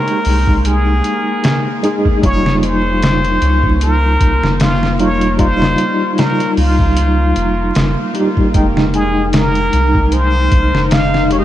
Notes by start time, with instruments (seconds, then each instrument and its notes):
Already playing: tine electric piano G#3 D#4 G4 G5, synth drone A#3, muted trumpet A#4
0.08 closed hi-hat
0.25 sub bass C2, open hi-hat
0.47 kick
0.65 muted trumpet G#4, closed hi-hat
1.04 closed hi-hat
1.44 snare, closed hi-hat
1.83 tine electric piano G#3 D#4 G#4, closed hi-hat
2.05 kick
2.22 sub bass F1, tine electric piano G3 D#4 F4, muted trumpet C#5, kick, closed hi-hat
2.46 snare
2.63 muted trumpet C5, closed hi-hat
3.02 snare, closed hi-hat
3.25 closed hi-hat
3.42 sub bass C#2, closed hi-hat
3.64 kick
3.81 muted trumpet A#4, closed hi-hat
4.21 sub bass C2, kick, closed hi-hat
4.43 sub bass F1, snare
4.60 muted trumpet F4, snare, closed hi-hat
4.83 snare
4.99 tine electric piano G3 D#4 F4, muted trumpet C#5, closed hi-hat
5.21 closed hi-hat
5.37 tine electric piano G3 D#4 F4, muted trumpet C5, kick, closed hi-hat
5.62 snare
5.78 closed hi-hat
6.18 muted trumpet A#4, snare, closed hi-hat
6.40 closed hi-hat
6.57 sub bass C#2, muted trumpet F4, open hi-hat
6.79 kick
6.97 closed hi-hat
7.36 sub bass F1, closed hi-hat
7.75 sub bass F1, snare, closed hi-hat
8.14 tine electric piano G3 D#4 G4, closed hi-hat
8.37 kick
8.52 sub bass F1, tine electric piano G#3 D#4 G5, ambient pad D#4 D#5, kick, closed hi-hat
8.77 snare
8.94 muted trumpet G#4, closed hi-hat
9.33 muted trumpet A#4, snare, closed hi-hat
9.55 closed hi-hat
9.73 sub bass C2, closed hi-hat
9.95 kick
10.12 muted trumpet C5, closed hi-hat
10.52 sub bass C2, kick, closed hi-hat
10.74 sub bass F1, snare
10.91 muted trumpet F5, snare, closed hi-hat
11.14 snare
11.29 tine electric piano G#3 D#4 G4, muted trumpet C#5, closed hi-hat
11.39 muted trumpet D#5